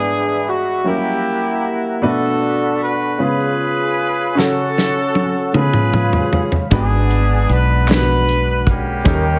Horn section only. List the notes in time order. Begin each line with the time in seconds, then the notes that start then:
Already playing: B3 D4 G#4
0.48 F#4
0.86 A#3 E4 G4
2.04 D4 F#4 A4
2.81 B4
3.21 F4 G#4 B4
4.37 C#4 F#4 A4
5.55 F4 G#4 B4
6.74 B3 D4 G#4
7.51 B4
7.90 D4 F#4 B4
8.68 A#3 C#4 G4